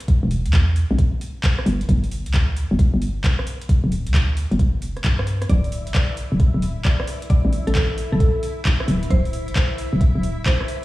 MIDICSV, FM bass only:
0, 0, Header, 1, 2, 480
1, 0, Start_track
1, 0, Tempo, 451128
1, 87, Time_signature, 4, 2, 24, 8
1, 11542, End_track
2, 0, Start_track
2, 0, Title_t, "FM bass"
2, 0, Program_c, 0, 39
2, 246, Note_on_c, 0, 28, 91
2, 484, Note_on_c, 0, 40, 77
2, 500, Note_off_c, 0, 28, 0
2, 893, Note_off_c, 0, 40, 0
2, 965, Note_on_c, 0, 33, 88
2, 1024, Note_off_c, 0, 33, 0
2, 1766, Note_on_c, 0, 31, 96
2, 1960, Note_off_c, 0, 31, 0
2, 2008, Note_on_c, 0, 31, 96
2, 2407, Note_on_c, 0, 38, 80
2, 2423, Note_off_c, 0, 31, 0
2, 2815, Note_off_c, 0, 38, 0
2, 2885, Note_on_c, 0, 31, 87
2, 2944, Note_off_c, 0, 31, 0
2, 3125, Note_on_c, 0, 31, 87
2, 3650, Note_off_c, 0, 31, 0
2, 4084, Note_on_c, 0, 26, 89
2, 4325, Note_on_c, 0, 38, 78
2, 4341, Note_off_c, 0, 26, 0
2, 4734, Note_off_c, 0, 38, 0
2, 4804, Note_on_c, 0, 31, 87
2, 5127, Note_on_c, 0, 29, 82
2, 5143, Note_off_c, 0, 31, 0
2, 5367, Note_on_c, 0, 43, 96
2, 5383, Note_off_c, 0, 29, 0
2, 5810, Note_off_c, 0, 43, 0
2, 5848, Note_on_c, 0, 26, 96
2, 6243, Note_on_c, 0, 33, 74
2, 6259, Note_off_c, 0, 26, 0
2, 6653, Note_off_c, 0, 33, 0
2, 6723, Note_on_c, 0, 26, 87
2, 6783, Note_off_c, 0, 26, 0
2, 6963, Note_on_c, 0, 26, 95
2, 7489, Note_off_c, 0, 26, 0
2, 7924, Note_on_c, 0, 33, 93
2, 8075, Note_off_c, 0, 33, 0
2, 8163, Note_on_c, 0, 33, 77
2, 8573, Note_off_c, 0, 33, 0
2, 8644, Note_on_c, 0, 26, 93
2, 8704, Note_off_c, 0, 26, 0
2, 9447, Note_on_c, 0, 26, 99
2, 9640, Note_off_c, 0, 26, 0
2, 9687, Note_on_c, 0, 26, 95
2, 10084, Note_on_c, 0, 33, 80
2, 10099, Note_off_c, 0, 26, 0
2, 10493, Note_off_c, 0, 33, 0
2, 10563, Note_on_c, 0, 26, 91
2, 10623, Note_off_c, 0, 26, 0
2, 10804, Note_on_c, 0, 26, 89
2, 11330, Note_off_c, 0, 26, 0
2, 11542, End_track
0, 0, End_of_file